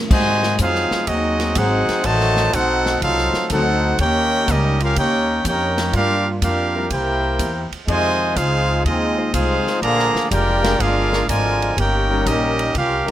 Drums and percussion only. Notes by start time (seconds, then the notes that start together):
0.11 kick, crash
0.43 snare
0.59 kick, hi-hat pedal, ride
0.75 snare
0.91 snare
1.07 kick, ride
1.39 snare, ride
1.55 kick, hi-hat pedal, ride
1.89 snare, ride
2.04 kick, ride
2.20 snare
2.36 snare
2.53 kick, hi-hat pedal, ride
2.86 snare
3.02 kick, ride
3.18 snare
3.34 snare
3.50 kick, hi-hat pedal, ride
3.99 kick, ride
4.48 kick, hi-hat pedal, ride
4.80 ride
4.96 kick, ride
5.45 kick, hi-hat pedal, ride
5.78 snare, ride
5.93 kick, ride
6.42 kick, hi-hat pedal, ride
6.90 kick, ride
7.39 kick, hi-hat pedal, ride
7.72 ride
7.88 kick, ride
8.36 kick, hi-hat pedal, ride
8.85 kick, ride
9.34 kick, hi-hat pedal, ride
9.67 snare
9.82 kick, ride
9.99 snare
10.16 snare
10.31 kick, hi-hat pedal, ride
10.64 snare, ride
10.80 kick, ride
11.13 snare
11.29 kick, hi-hat pedal, ride
11.62 ride
11.77 kick, ride
12.26 kick, hi-hat pedal, ride
12.59 ride
12.75 kick, ride